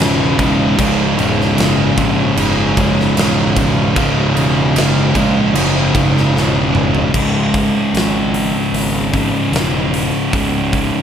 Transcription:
Already playing: C#2 G#2 C#3
0.00 E1 C#2 G#2 C#3, snare
0.39 C#2 G#2 C#3, kick, crash
0.77 C#1 C#2 G#2 C#3, kick, crash
1.18 E1 C#2 G#2 C#3, crash
1.41 snare
1.56 F#1 C#2 G#2 C#3, crash
1.60 snare
1.96 A#1 C#2 G#2 C#3, kick, crash
2.36 F#1 C#2 G#2 C#3, crash
2.76 C#2 G#2 C#3, kick, crash
3.00 snare
3.16 E1 C#2 G#2 C#3, snare, crash
3.55 C#2 G#2 C#3, kick, crash
3.94 C#1 C#2 G#2 C#3, kick, crash
4.34 E1 C#2 G#2 C#3, crash
4.74 F#1 C#2 G#2 C#3, crash
4.78 snare
5.14 A#1 C#2 G#2 C#3, kick, crash
5.54 F#1 C#2 G#2 C#3, crash
5.94 C#2 G#2 C#3, kick, crash
6.17 snare
6.33 E1 C#2 G#2 C#3
6.37 snare
6.73 C#2 G#2 C#3, mid tom
6.95 floor tom
7.12 C#1 C#2 G#2 C#3, kick, crash
7.54 kick, open hi-hat
7.94 G#1, snare, open hi-hat
8.34 open hi-hat
8.73 G#1, open hi-hat
9.12 C#2 G#2 C#3, kick, open hi-hat
9.52 E1 C#2 G#2 C#3, open hi-hat
9.56 snare
9.94 open hi-hat
10.30 C#1 C#2 G#2 C#3, kick, open hi-hat
10.73 kick, open hi-hat

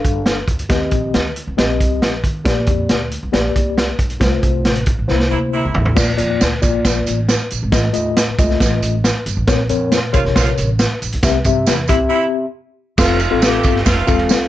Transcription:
Already playing: D4 A4 F5
0.05 G1, kick, closed hi-hat
0.26 snare, closed hi-hat
0.48 D2, kick, closed hi-hat
0.59 closed hi-hat
0.69 D#2 D#3 C4 G4 D#5, kick, snare, closed hi-hat
0.91 A#1, kick, closed hi-hat
1.14 D2, snare, closed hi-hat
1.36 closed hi-hat
1.47 C2
1.57 A#1 C4 G4 D#5, snare, closed hi-hat
1.80 C2, kick, closed hi-hat
2.02 A#1, snare, closed hi-hat
2.24 D#3, kick, closed hi-hat
2.44 A#1 A#2 A#3 G4 D5, kick, snare, closed hi-hat
2.66 F2, kick, closed hi-hat
2.89 D2, snare, closed hi-hat
3.11 closed hi-hat
3.23 C2
3.32 A#1 A#3 G4 D5, snare, closed hi-hat
3.56 C2, kick, closed hi-hat
3.78 snare, closed hi-hat
3.99 B1, kick, closed hi-hat
4.10 closed hi-hat
4.20 C2 C3 G3 F4 C5, kick, snare, closed hi-hat
4.26 A3
4.43 C2, kick, closed hi-hat
4.65 A1, snare, closed hi-hat
4.75 closed hi-hat
4.86 kick, closed hi-hat
4.99 A1
5.08 C2 C3 A#3 E4 C5, snare
5.20 snare
5.31 D2 C3 A#3 E4
5.53 C3 A#3 E4
5.65 C2
5.74 A1, floor tom
5.85 floor tom
5.95 A#1 A#2 A#3 F4 D5, kick, snare, crash, tambourine
6.17 F2 A#3 F4 D5, closed hi-hat, tambourine
6.41 D2, snare, closed hi-hat, tambourine
6.62 A#1 A#3 F4 D5, kick, closed hi-hat, tambourine
6.85 A#1, kick, snare, closed hi-hat, tambourine
7.06 A1, closed hi-hat, tambourine
7.29 snare, closed hi-hat, tambourine
7.50 A#1, closed hi-hat, tambourine
7.63 G#1
7.72 A1 A2 A3 F4 D#5, kick, snare, closed hi-hat, tambourine
7.93 D#2 A3 F4 D#5, closed hi-hat, tambourine
8.16 snare, closed hi-hat, tambourine
8.28 muted upright bass stroke
8.38 C2 G#3 F4 D#5, kick, closed hi-hat, tambourine
8.44 A3
8.49 snare
8.60 A1, kick, snare, closed hi-hat, tambourine
8.82 A1, closed hi-hat, tambourine
9.04 snare, closed hi-hat, tambourine
9.26 G1, closed hi-hat, tambourine
9.37 A1
9.47 A#1 A#2 C4 A#4 C#5, kick, snare, closed hi-hat, tambourine
9.69 F2 C4 A#4 C#5, closed hi-hat, tambourine
9.92 C#3 C4 F4, snare, closed hi-hat, tambourine
10.13 C#2 C3 C#3 C4 F4 A#4 C#5, kick, closed hi-hat, tambourine
10.25 A#1, snare
10.35 A#1 C#3 C4 F4, kick, snare, closed hi-hat, tambourine
10.46 closed hi-hat
10.58 A1, closed hi-hat, tambourine
10.79 snare, closed hi-hat, tambourine
11.02 A#1, closed hi-hat, tambourine
11.12 B1, closed hi-hat
11.23 C2 C3 C4 G4 E5, kick, snare, closed hi-hat, tambourine
11.44 G2 C4 G4 E5, kick, closed hi-hat, tambourine
11.67 E2 C3 G3 E4, snare, closed hi-hat, tambourine
11.88 C2 C3 G3 C4 E4 G4 E5, kick, closed hi-hat, tambourine
12.09 C3 G3 E4
12.98 F1 C3 A3 C4 F4 A4 F5, kick, snare, crash, tambourine
13.09 ride
13.19 ride, tambourine
13.31 A1 C4 F4 A4 F5
13.41 C3 A3 G4, snare, ride, tambourine
13.63 G1, kick, ride, tambourine
13.76 snare
13.85 F1 C3 A3 F4, kick, snare, ride, tambourine
14.07 E1 C4 F4 A4 F5, kick, ride, tambourine
14.19 ride
14.29 C2, snare, ride, tambourine

